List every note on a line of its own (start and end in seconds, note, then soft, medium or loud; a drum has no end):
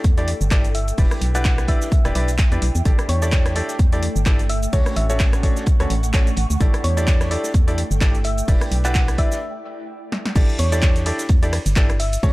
0.00 1.74 A3 medium
0.00 1.74 A4 medium
0.00 4.73 G5 medium
0.04 0.34 E2 medium
0.04 kick loud
0.04 closed hi-hat medium
0.04 shaker medium
0.17 0.27 D4 medium
0.17 0.27 E4 medium
0.17 0.27 G4 medium
0.17 0.27 A4 medium
0.17 0.27 D5 loud
0.17 closed hi-hat soft
0.17 shaker soft
0.28 closed hi-hat medium
0.28 open hi-hat loud
0.41 0.93 G1 loud
0.41 shaker medium
0.51 0.64 D4 medium
0.51 0.64 E4 medium
0.51 0.64 G4 medium
0.51 0.64 A4 medium
0.51 0.64 D5 loud
0.51 kick loud
0.51 snare loud
0.51 clap loud
0.51 closed hi-hat medium
0.51 shaker medium
0.64 closed hi-hat soft
0.64 shaker soft
0.75 0.92 E5 medium
0.75 closed hi-hat medium
0.75 open hi-hat loud
0.88 closed hi-hat soft
0.88 shaker medium
0.98 1.07 E1 loud
0.98 1.32 D4 medium
0.98 3.61 E4 medium
0.98 1.32 E4 medium
0.98 1.32 G4 medium
0.98 1.32 B4 medium
0.98 1.32 D5 medium
0.98 kick loud
0.98 closed hi-hat medium
0.98 open hi-hat medium
0.98 shaker medium
1.07 3.61 E5 medium
1.07 cross-stick medium
1.07 closed hi-hat medium
1.11 shaker soft
1.21 1.75 B1 medium
1.21 closed hi-hat medium
1.21 open hi-hat loud
1.35 1.66 D4 medium
1.35 1.66 E4 medium
1.35 1.66 G4 medium
1.35 1.66 B4 medium
1.35 1.66 D5 loud
1.35 1.50 F#5 medium
1.35 closed hi-hat soft
1.35 shaker medium
1.45 kick loud
1.45 snare loud
1.45 clap loud
1.45 closed hi-hat medium
1.45 shaker medium
1.58 cross-stick medium
1.58 snare soft
1.58 closed hi-hat soft
1.58 shaker soft
1.68 1.87 D4 medium
1.68 1.87 E4 medium
1.68 1.87 G4 medium
1.68 1.87 B4 medium
1.68 1.87 D5 loud
1.68 2.05 E5 loud
1.68 kick medium
1.68 closed hi-hat medium
1.68 open hi-hat loud
1.81 snare soft
1.81 closed hi-hat soft
1.81 shaker medium
1.92 kick loud
1.92 closed hi-hat medium
1.92 shaker medium
2.05 2.12 E1 medium
2.05 2.13 D4 medium
2.05 2.13 E4 medium
2.05 2.13 G4 medium
2.05 2.13 B4 medium
2.05 2.13 D5 loud
2.05 cross-stick medium
2.05 closed hi-hat soft
2.05 shaker soft
2.15 2.51 B1 medium
2.15 2.28 D4 medium
2.15 2.28 E4 medium
2.15 2.28 G4 medium
2.15 2.28 B4 medium
2.15 2.28 D5 loud
2.15 closed hi-hat medium
2.15 open hi-hat loud
2.28 closed hi-hat soft
2.28 shaker medium
2.38 kick loud
2.38 snare loud
2.38 clap loud
2.38 closed hi-hat medium
2.38 shaker medium
2.52 2.59 E2 loud
2.52 2.62 D4 medium
2.52 2.62 E4 medium
2.52 2.62 G4 medium
2.52 2.62 B4 medium
2.52 2.62 D5 medium
2.52 closed hi-hat soft
2.52 shaker soft
2.62 2.71 B1 loud
2.62 closed hi-hat medium
2.62 open hi-hat loud
2.75 2.82 E2 loud
2.75 closed hi-hat soft
2.75 shaker medium
2.85 2.94 A1 medium
2.85 9.24 A3 medium
2.85 3.19 D4 medium
2.85 3.19 E4 medium
2.85 3.19 G4 medium
2.85 3.19 A4 medium
2.85 3.19 D5 medium
2.85 kick loud
2.85 closed hi-hat medium
2.85 shaker medium
2.99 cross-stick medium
2.99 closed hi-hat soft
2.99 shaker soft
3.09 3.62 E2 loud
3.09 3.56 C#5 loud
3.09 closed hi-hat medium
3.09 open hi-hat loud
3.16 5.39 A4 medium
3.22 3.53 D4 loud
3.22 3.53 E4 medium
3.22 3.53 G4 medium
3.22 3.53 A4 medium
3.22 3.53 D5 loud
3.22 closed hi-hat soft
3.22 shaker medium
3.32 kick loud
3.32 snare loud
3.32 clap loud
3.32 closed hi-hat medium
3.32 shaker medium
3.45 cross-stick medium
3.45 snare medium
3.45 closed hi-hat soft
3.45 shaker soft
3.55 3.74 D4 medium
3.55 3.74 E4 medium
3.55 3.74 G4 medium
3.55 3.74 A4 medium
3.55 3.74 D5 loud
3.55 closed hi-hat medium
3.55 open hi-hat loud
3.69 snare soft
3.69 closed hi-hat soft
3.69 shaker medium
3.79 4.09 E2 loud
3.79 kick loud
3.79 closed hi-hat medium
3.79 shaker medium
3.92 4.02 D4 medium
3.92 4.02 E4 medium
3.92 4.02 G4 medium
3.92 4.02 A4 medium
3.92 4.02 D5 loud
3.92 closed hi-hat soft
3.92 shaker soft
4.03 closed hi-hat medium
4.03 open hi-hat loud
4.16 4.68 G1 loud
4.16 shaker medium
4.26 4.39 D4 medium
4.26 4.39 E4 medium
4.26 4.39 G4 medium
4.26 4.39 A4 medium
4.26 4.39 D5 loud
4.26 kick loud
4.26 snare loud
4.26 clap loud
4.26 closed hi-hat medium
4.26 shaker medium
4.39 closed hi-hat soft
4.39 shaker soft
4.49 4.67 E5 medium
4.49 closed hi-hat medium
4.49 open hi-hat loud
4.63 closed hi-hat soft
4.63 shaker medium
4.73 4.82 D2 loud
4.73 5.07 C#4 medium
4.73 5.07 D4 medium
4.73 5.07 F#4 medium
4.73 5.07 A4 medium
4.73 5.07 C#5 medium
4.73 4.90 C#5 medium
4.73 kick loud
4.73 closed hi-hat medium
4.73 open hi-hat medium
4.73 shaker medium
4.81 6.37 F#5 medium
4.81 7.02 C#6 medium
4.86 cross-stick medium
4.86 closed hi-hat medium
4.86 shaker soft
4.96 5.50 A1 loud
4.96 5.05 E5 medium
4.96 closed hi-hat medium
4.96 open hi-hat loud
5.10 5.41 C#4 medium
5.10 5.41 D4 medium
5.10 5.41 F#4 medium
5.10 5.41 A4 medium
5.10 5.41 C#5 loud
5.10 5.16 E5 medium
5.10 closed hi-hat soft
5.10 shaker medium
5.20 kick loud
5.20 snare loud
5.20 clap loud
5.20 closed hi-hat medium
5.20 shaker medium
5.32 cross-stick medium
5.32 snare soft
5.32 closed hi-hat soft
5.32 shaker soft
5.43 5.62 C#4 medium
5.43 5.62 D4 medium
5.43 5.62 F#4 medium
5.43 5.62 A4 medium
5.43 5.62 C#5 loud
5.43 kick medium
5.43 closed hi-hat medium
5.43 open hi-hat loud
5.57 snare medium
5.57 closed hi-hat soft
5.57 shaker medium
5.66 kick loud
5.66 closed hi-hat medium
5.66 shaker medium
5.80 5.87 D2 medium
5.80 5.90 C#4 loud
5.80 5.90 D4 medium
5.80 5.90 F#4 medium
5.80 5.90 A4 medium
5.80 5.90 C#5 loud
5.80 cross-stick medium
5.80 closed hi-hat medium
5.80 shaker soft
5.90 6.32 A1 medium
5.90 closed hi-hat medium
5.90 open hi-hat loud
6.03 closed hi-hat soft
6.03 shaker medium
6.14 6.26 C#4 medium
6.14 6.26 D4 medium
6.14 6.26 F#4 medium
6.14 6.26 A4 medium
6.14 6.26 C#5 loud
6.14 kick loud
6.14 snare loud
6.14 clap loud
6.14 closed hi-hat medium
6.14 shaker medium
6.27 closed hi-hat medium
6.27 shaker soft
6.37 6.46 A1 medium
6.37 closed hi-hat medium
6.37 open hi-hat loud
6.42 9.24 A4 medium
6.50 6.57 D2 medium
6.50 closed hi-hat soft
6.50 shaker medium
6.61 6.69 A1 loud
6.61 6.94 D4 medium
6.61 6.94 E4 medium
6.61 6.94 G4 medium
6.61 6.94 A4 medium
6.61 6.94 D5 medium
6.61 kick loud
6.61 closed hi-hat medium
6.61 shaker medium
6.74 cross-stick medium
6.74 closed hi-hat soft
6.74 closed hi-hat medium
6.74 shaker soft
6.84 7.37 E2 medium
6.84 7.31 C#5 loud
6.84 closed hi-hat medium
6.84 open hi-hat loud
6.97 7.28 D4 loud
6.97 7.28 E4 medium
6.97 7.28 G4 medium
6.97 7.28 A4 medium
6.97 7.28 D5 loud
6.97 closed hi-hat soft
6.97 shaker medium
7.03 9.42 G5 medium
7.07 kick loud
7.07 snare loud
7.07 clap loud
7.07 closed hi-hat medium
7.07 shaker medium
7.20 cross-stick medium
7.20 snare medium
7.20 closed hi-hat medium
7.20 shaker soft
7.31 7.49 D4 medium
7.31 7.49 E4 medium
7.31 7.49 G4 medium
7.31 7.49 A4 medium
7.31 7.49 D5 loud
7.31 closed hi-hat medium
7.31 open hi-hat medium
7.44 snare medium
7.44 closed hi-hat soft
7.44 shaker medium
7.54 7.84 E2 medium
7.54 kick loud
7.54 closed hi-hat medium
7.54 shaker medium
7.68 7.77 D4 medium
7.68 7.77 E4 medium
7.68 7.77 G4 medium
7.68 7.77 A4 medium
7.68 7.77 D5 loud
7.68 closed hi-hat medium
7.68 shaker soft
7.78 closed hi-hat medium
7.78 open hi-hat loud
7.91 8.43 G1 loud
7.91 shaker medium
8.01 8.14 D4 medium
8.01 8.14 E4 medium
8.01 8.14 G4 medium
8.01 8.14 A4 medium
8.01 8.14 D5 loud
8.01 kick loud
8.01 snare loud
8.01 clap loud
8.01 closed hi-hat medium
8.01 shaker medium
8.15 closed hi-hat medium
8.15 shaker soft
8.24 8.42 E5 medium
8.24 closed hi-hat medium
8.24 open hi-hat loud
8.38 closed hi-hat soft
8.38 shaker medium
8.48 8.57 E1 loud
8.48 8.82 D4 medium
8.48 9.42 E4 medium
8.48 8.82 E4 medium
8.48 8.82 G4 medium
8.48 8.82 B4 medium
8.48 8.82 D5 medium
8.48 kick loud
8.48 closed hi-hat medium
8.48 open hi-hat medium
8.48 shaker medium
8.61 cross-stick medium
8.61 closed hi-hat medium
8.61 shaker soft
8.71 9.25 B1 medium
8.71 closed hi-hat medium
8.71 open hi-hat loud
8.85 9.16 D4 loud
8.85 9.16 E4 medium
8.85 9.16 G4 medium
8.85 9.16 B4 medium
8.85 9.16 D5 loud
8.85 9.00 F#5 loud
8.85 clap soft
8.85 closed hi-hat soft
8.85 shaker medium
8.95 kick loud
8.95 snare loud
8.95 clap loud
8.95 closed hi-hat loud
8.95 closed hi-hat medium
8.95 shaker medium
9.08 cross-stick medium
9.08 snare soft
9.08 closed hi-hat medium
9.08 shaker soft
9.18 9.37 D4 medium
9.18 9.37 E4 medium
9.18 9.37 G4 medium
9.18 9.37 B4 medium
9.18 9.37 D5 loud
9.18 9.55 E5 medium
9.18 kick medium
9.18 closed hi-hat medium
9.18 open hi-hat loud
9.32 snare soft
9.32 closed hi-hat soft
9.32 shaker medium
10.12 snare medium
10.26 snare medium
10.36 10.44 A1 loud
10.36 10.69 D4 medium
10.36 10.69 E4 medium
10.36 10.69 G4 medium
10.36 10.69 A4 medium
10.36 10.69 D5 medium
10.36 kick loud
10.36 closed hi-hat loud
10.36 crash loud
10.36 ride medium
10.36 shaker medium
10.49 closed hi-hat soft
10.49 shaker soft
10.58 11.12 E2 medium
10.58 11.06 C#5 loud
10.58 closed hi-hat medium
10.58 open hi-hat loud
10.58 ride medium
10.72 11.03 D4 loud
10.72 11.03 E4 medium
10.72 11.03 G4 medium
10.72 11.03 A4 medium
10.72 11.03 D5 loud
10.72 closed hi-hat medium
10.72 shaker medium
10.82 kick loud
10.82 snare loud
10.82 clap loud
10.82 closed hi-hat medium
10.82 ride medium
10.82 shaker medium
10.96 snare medium
10.96 closed hi-hat medium
10.96 shaker soft
11.06 11.24 D4 medium
11.06 11.24 E4 medium
11.06 11.24 G4 medium
11.06 11.24 A4 medium
11.06 11.24 D5 loud
11.06 closed hi-hat medium
11.06 open hi-hat loud
11.06 ride medium
11.19 snare medium
11.19 closed hi-hat medium
11.19 shaker medium
11.29 11.59 E2 medium
11.29 kick loud
11.29 closed hi-hat medium
11.29 ride medium
11.29 shaker medium
11.43 11.52 D4 medium
11.43 11.52 E4 medium
11.43 11.52 G4 medium
11.43 11.52 A4 medium
11.43 11.52 D5 loud
11.43 closed hi-hat medium
11.43 shaker soft
11.53 cross-stick medium
11.53 closed hi-hat medium
11.53 open hi-hat loud
11.53 ride medium
11.66 12.18 G1 loud
11.66 closed hi-hat medium
11.66 shaker medium
11.76 11.89 D4 medium
11.76 11.89 E4 medium
11.76 11.89 G4 medium
11.76 11.89 A4 medium
11.76 11.89 D5 loud
11.76 kick loud
11.76 snare loud
11.76 clap loud
11.76 closed hi-hat medium
11.76 ride medium
11.76 shaker medium
11.90 cross-stick medium
11.90 closed hi-hat soft
11.90 shaker soft
12.00 12.17 E5 medium
12.00 closed hi-hat medium
12.00 open hi-hat loud
12.00 ride medium
12.13 closed hi-hat medium
12.13 shaker medium
12.23 12.32 D2 loud
12.23 12.33 C#4 medium
12.23 12.33 D4 medium
12.23 12.33 F#4 medium
12.23 12.33 A4 medium
12.23 12.33 C#5 medium
12.23 kick loud
12.23 open hi-hat medium
12.23 ride medium
12.23 shaker medium